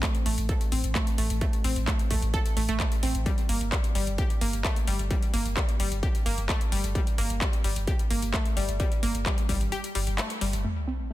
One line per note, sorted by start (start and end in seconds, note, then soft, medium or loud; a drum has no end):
0.03 0.09 A3 medium
0.03 kick loud
0.03 clap loud
0.03 closed hi-hat medium
0.15 closed hi-hat medium
0.26 0.37 A1 loud
0.26 0.35 A3 medium
0.26 open hi-hat loud
0.38 0.49 A1 medium
0.38 closed hi-hat medium
0.49 0.53 A4 medium
0.49 kick loud
0.49 closed hi-hat medium
0.61 closed hi-hat medium
0.72 0.83 A1 loud
0.72 0.81 C4 medium
0.72 open hi-hat loud
0.84 0.95 A1 medium
0.84 closed hi-hat medium
0.95 1.01 A3 loud
0.95 kick loud
0.95 clap loud
0.95 closed hi-hat medium
1.07 closed hi-hat medium
1.18 1.30 A1 medium
1.18 1.27 A3 medium
1.18 open hi-hat loud
1.30 1.41 A1 medium
1.30 closed hi-hat medium
1.41 1.45 A3 medium
1.41 kick loud
1.41 closed hi-hat medium
1.53 closed hi-hat medium
1.64 1.76 A1 loud
1.64 1.73 C4 medium
1.64 open hi-hat loud
1.76 1.87 A1 medium
1.76 closed hi-hat medium
1.87 1.93 A3 medium
1.87 kick loud
1.87 clap loud
1.87 closed hi-hat medium
1.99 closed hi-hat medium
2.11 2.22 A1 loud
2.11 2.19 A3 medium
2.11 kick medium
2.11 open hi-hat loud
2.22 2.33 A1 medium
2.22 closed hi-hat medium
2.34 2.37 A4 medium
2.34 kick loud
2.34 closed hi-hat medium
2.46 closed hi-hat medium
2.57 2.68 A1 loud
2.57 2.63 A3 medium
2.57 open hi-hat loud
2.69 2.80 A1 medium
2.69 2.74 A3 loud
2.69 closed hi-hat medium
2.80 2.86 A3 medium
2.80 kick loud
2.80 clap loud
2.80 closed hi-hat medium
2.92 closed hi-hat medium
3.03 3.14 A1 loud
3.03 3.09 C4 medium
3.03 open hi-hat loud
3.15 3.26 A1 medium
3.15 closed hi-hat medium
3.26 3.30 G3 medium
3.26 kick loud
3.26 closed hi-hat medium
3.38 closed hi-hat medium
3.49 3.60 G1 loud
3.49 3.58 A#3 medium
3.49 open hi-hat loud
3.61 3.72 G1 medium
3.61 closed hi-hat medium
3.72 3.78 G3 medium
3.72 kick loud
3.72 clap loud
3.72 closed hi-hat medium
3.84 closed hi-hat medium
3.95 4.06 G1 loud
3.95 4.04 G3 medium
3.95 open hi-hat loud
4.07 4.18 G1 medium
4.07 closed hi-hat medium
4.18 4.22 G4 medium
4.18 kick loud
4.18 closed hi-hat medium
4.30 closed hi-hat medium
4.41 4.53 G1 loud
4.41 4.50 A#3 medium
4.41 open hi-hat loud
4.53 4.64 G1 medium
4.53 closed hi-hat medium
4.64 4.70 A3 loud
4.64 kick loud
4.64 clap loud
4.64 closed hi-hat medium
4.76 closed hi-hat medium
4.87 4.99 G1 loud
4.87 4.96 G3 medium
4.87 open hi-hat loud
4.99 5.10 G1 medium
4.99 closed hi-hat medium
5.11 5.14 G3 medium
5.11 kick loud
5.11 closed hi-hat medium
5.22 closed hi-hat medium
5.34 5.45 G1 loud
5.34 5.43 A#3 medium
5.34 open hi-hat loud
5.46 5.57 G1 medium
5.46 closed hi-hat medium
5.57 5.63 G3 medium
5.57 kick loud
5.57 clap loud
5.57 closed hi-hat medium
5.69 closed hi-hat medium
5.80 5.91 G1 loud
5.80 5.89 G3 medium
5.80 open hi-hat loud
5.92 6.03 G1 medium
5.92 closed hi-hat medium
6.03 6.06 G4 medium
6.03 kick loud
6.03 closed hi-hat medium
6.15 closed hi-hat medium
6.26 6.37 G1 loud
6.26 6.35 A#3 medium
6.26 open hi-hat loud
6.38 6.49 G1 medium
6.38 closed hi-hat medium
6.49 6.55 A3 loud
6.49 kick loud
6.49 clap loud
6.49 closed hi-hat medium
6.61 closed hi-hat medium
6.72 6.83 G1 loud
6.72 6.81 G3 medium
6.72 open hi-hat loud
6.84 6.95 G1 medium
6.84 closed hi-hat medium
6.95 6.99 G3 medium
6.95 kick loud
6.95 closed hi-hat medium
7.07 closed hi-hat medium
7.18 7.29 G1 loud
7.18 7.27 A#3 medium
7.18 open hi-hat loud
7.30 7.41 G1 medium
7.30 closed hi-hat medium
7.41 7.47 G3 medium
7.41 kick loud
7.41 clap loud
7.41 closed hi-hat medium
7.53 closed hi-hat medium
7.64 7.76 G1 loud
7.64 7.73 G3 medium
7.64 open hi-hat loud
7.76 7.87 G1 medium
7.76 closed hi-hat medium
7.87 7.91 G4 medium
7.87 kick loud
7.87 closed hi-hat medium
7.99 closed hi-hat medium
8.10 8.22 G1 loud
8.10 8.19 A#3 medium
8.10 open hi-hat loud
8.22 8.33 G1 medium
8.22 closed hi-hat medium
8.34 8.40 A3 loud
8.34 kick loud
8.34 clap loud
8.34 closed hi-hat medium
8.46 closed hi-hat medium
8.57 8.68 G1 loud
8.57 8.66 G3 medium
8.57 open hi-hat loud
8.69 8.80 G1 medium
8.69 closed hi-hat medium
8.80 8.83 G3 medium
8.80 kick loud
8.80 closed hi-hat medium
8.92 closed hi-hat medium
9.03 9.14 G1 loud
9.03 9.12 A#3 medium
9.03 open hi-hat loud
9.15 9.26 G1 medium
9.15 closed hi-hat medium
9.26 9.32 G3 medium
9.26 kick loud
9.26 clap loud
9.26 closed hi-hat medium
9.38 closed hi-hat medium
9.49 9.60 G1 loud
9.49 9.58 G3 medium
9.49 kick medium
9.49 open hi-hat loud
9.61 9.72 G1 medium
9.61 closed hi-hat medium
9.72 9.76 G4 medium
9.72 closed hi-hat medium
9.84 closed hi-hat medium
9.95 10.07 G1 loud
9.95 9.99 G3 medium
9.95 open hi-hat loud
10.07 10.18 G1 medium
10.07 closed hi-hat medium
10.18 10.24 A3 medium
10.18 clap loud
10.18 closed hi-hat medium
10.30 closed hi-hat medium
10.41 10.53 G1 loud
10.41 10.45 G3 medium
10.41 open hi-hat loud
10.53 10.64 G1 medium
10.53 closed hi-hat medium
10.64 10.68 A3 medium
10.64 sub drop medium
10.87 10.96 C4 medium